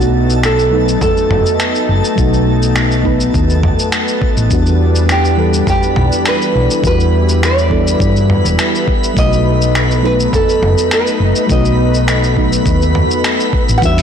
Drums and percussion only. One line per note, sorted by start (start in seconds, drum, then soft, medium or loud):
0.01 shaker soft
0.30 shaker medium
0.43 finger snap medium
0.43 shaker soft
0.59 shaker soft
0.88 shaker medium
1.01 kick loud
1.01 mid tom medium
1.01 shaker soft
1.17 shaker soft
1.31 mid tom medium
1.46 shaker medium
1.60 finger snap loud
1.60 shaker medium
1.75 shaker soft
2.04 shaker medium
2.18 kick loud
2.18 shaker medium
2.33 shaker soft
2.62 shaker medium
2.76 finger snap medium
2.76 shaker soft
2.91 shaker soft
3.05 kick medium
3.20 shaker medium
3.34 kick loud
3.34 shaker soft
3.50 shaker soft
3.63 kick medium
3.63 mid tom medium
3.79 shaker medium
3.92 finger snap medium
3.92 shaker medium
4.08 shaker soft
4.22 kick loud
4.37 shaker medium
4.50 kick loud
4.50 shaker medium
4.66 shaker soft
4.95 shaker medium
5.09 finger snap medium
5.09 shaker soft
5.25 shaker soft
5.54 shaker medium
5.67 kick loud
5.67 mid tom medium
5.67 shaker soft
5.83 shaker soft
5.96 mid tom medium
6.12 shaker medium
6.26 finger snap loud
6.26 shaker medium
6.42 shaker soft
6.70 shaker medium
6.84 kick loud
6.84 shaker medium
7.00 shaker soft
7.29 shaker medium
7.43 finger snap medium
7.43 shaker medium
7.58 shaker soft
7.71 kick medium
7.87 shaker medium
8.00 kick loud
8.00 shaker medium
8.16 shaker soft
8.30 mid tom medium
8.45 shaker medium
8.59 finger snap loud
8.59 shaker medium
8.75 shaker soft
8.88 kick loud
9.03 shaker medium
9.17 kick loud
9.17 shaker medium
9.33 shaker soft
9.61 shaker medium
9.75 finger snap medium
9.75 shaker medium
9.91 shaker soft
10.20 shaker medium
10.33 kick loud
10.33 mid tom medium
10.33 shaker soft
10.49 shaker soft
10.63 mid tom medium
10.78 shaker medium
10.91 finger snap loud
10.91 shaker medium
11.07 shaker soft
11.35 shaker medium
11.49 kick loud
11.49 shaker medium
11.65 shaker soft
11.94 shaker medium
12.08 finger snap medium
12.08 shaker medium
12.23 shaker soft
12.37 kick medium
12.52 shaker medium
12.66 kick loud
12.66 shaker medium
12.82 shaker soft
12.95 mid tom medium
13.11 shaker medium
13.24 finger snap loud
13.24 shaker medium
13.40 shaker soft
13.53 kick loud
13.69 shaker medium
13.82 kick loud
13.82 shaker medium
13.98 open hi-hat soft
13.98 shaker soft